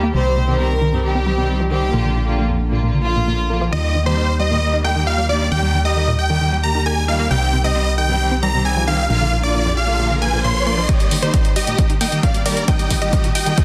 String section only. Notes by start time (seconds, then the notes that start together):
0.14 D#3 G3 C4 G4
0.48 D#3 G3 C4 G4
0.93 D#3 G3 C4 G4
1.04 D#3 G3 C4 G4
1.26 D#3 G3 C4 G4
1.37 D#3 G3 C4 G4
1.71 D#3 G3 C4 G4
1.93 D3 F3 A#3 F4
2.27 D3 F3 A#3 F4
2.72 D3 F3 A#3 F4
2.83 D3 F3 A#3 F4
3.05 D3 F3 A#3 F4
3.16 D3 F3 A#3 F4
3.50 D3 F3 A#3 F4
3.72 D#3 G3 A#3 G4
4.06 D#3 G3 A#3 G4
4.51 D#3 G3 A#3 G4
4.62 D#3 G3 A#3 G4
4.84 D#3 G3 A#3 G4
4.96 D#3 G3 A#3 G4
5.29 D#3 G3 A#3 G4
5.52 D#3 G3 A#3 G4
5.85 D#3 G3 A#3 G4
6.30 D#3 G3 A#3 G4
6.41 D#3 G3 A#3 G4
6.64 D#3 G3 A#3 G4
6.75 D#3 G3 A#3 G4
7.08 D#3 G3 A#3 G4
7.31 D#3 G3 C4 G4
7.64 D#3 G3 C4 G4
8.09 D#3 G3 C4 G4
8.20 D#3 G3 C4 G4
8.43 D#3 G3 C4 G4
8.54 D#3 G3 C4 G4
8.87 D#3 G3 C4 G4
9.10 D3 F3 A#3 F4
9.43 D3 F3 A#3 F4
9.88 D3 F3 A#3 F4
9.99 D3 F3 A#3 F4
10.22 D3 F3 A#3 F4
10.33 D3 F3 A#3 F4
10.66 D3 F3 A#3 F4
10.89 D#3 G3 A#3 G4
11.23 D#3 G3 A#3 G4
11.67 D#3 G3 A#3 G4
11.78 D#3 G3 A#3 G4
12.01 D#3 G3 A#3 G4
12.12 D#3 G3 A#3 G4
12.46 D#3 G3 A#3 G4
12.68 D#3 G3 A#3 G4
13.02 D#3 G3 A#3 G4
13.46 D#3 G3 A#3 G4
13.58 D#3 G3 A#3 G4